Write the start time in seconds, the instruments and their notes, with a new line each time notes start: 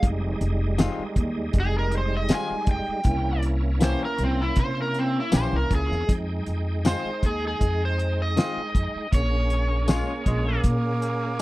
0.00 upright bass F1, tonewheel organ G3 G#3 D#4, kick, closed hi-hat
0.41 upright bass F1, closed hi-hat
0.78 clean electric guitar D#3 G#3 C4 F4, snare, closed hi-hat, tambourine
0.99 muted upright bass stroke
1.16 upright bass D#2, kick, closed hi-hat
1.53 upright bass F1, kick, closed hi-hat
1.60 electric slide guitar G#4
1.78 electric slide guitar A#4
1.92 closed hi-hat
1.97 electric slide guitar C5
2.17 electric slide guitar D#5
2.29 clean electric guitar D#3 G#3 C4 F4, snare, closed hi-hat, tambourine
2.35 electric slide guitar G#5
2.50 muted upright bass stroke
2.67 upright bass F1, kick, closed hi-hat
2.71 electric slide guitar G5
2.88 muted upright bass stroke
3.03 upright bass C2, tonewheel organ A#3 C#4 E4, kick, closed hi-hat
3.43 closed hi-hat
3.81 clean electric guitar E3 A#3 C#4 G4, electric slide guitar C5, snare, closed hi-hat, tambourine
4.05 electric slide guitar A#4
4.18 upright bass C2, closed hi-hat
4.24 electric slide guitar C4
4.42 electric slide guitar E4
4.56 upright bass C3, electric slide guitar C5, kick, closed hi-hat
4.82 electric slide guitar A#4
4.94 closed hi-hat
4.99 electric slide guitar C4
5.20 electric slide guitar E4
5.32 upright bass A#1, clean electric guitar E3 A#3 C#4 G4, snare, closed hi-hat, tambourine
5.36 electric slide guitar C5
5.53 upright bass C2, electric slide guitar A#4
5.71 upright bass C#2, kick, closed hi-hat
5.75 electric slide guitar G#4
5.91 upright bass E2, snare
6.07 upright bass F2, tonewheel organ G#3 D#4, kick, closed hi-hat
6.11 tonewheel organ G5
6.46 upright bass F2, closed hi-hat
6.85 clean electric guitar D#3 G#3 C4 F4, electric slide guitar C5, snare, closed hi-hat, tambourine
7.05 muted upright bass stroke
7.23 upright bass D#2, electric slide guitar G#4, kick, closed hi-hat
7.48 electric slide guitar G#4
7.61 upright bass F2, kick, closed hi-hat
7.85 electric slide guitar C5
7.99 closed hi-hat
8.22 electric slide guitar D#5
8.37 clean electric guitar D#3 G#3 C4 F4, snare, closed hi-hat, tambourine
8.56 muted upright bass stroke
8.75 upright bass F2, kick, closed hi-hat
8.95 muted upright bass stroke
9.11 upright bass A#1, tonewheel organ A#3 C#4 G#4, electric slide guitar C#5, kick, closed hi-hat
9.50 closed hi-hat
9.88 clean electric guitar G#3 C#4 F4, snare, closed hi-hat, tambourine
10.26 upright bass A#1, tenor saxophone G#3, kick, closed hi-hat
10.47 tenor saxophone A#3
10.64 upright bass A#2, kick, closed hi-hat
11.02 closed hi-hat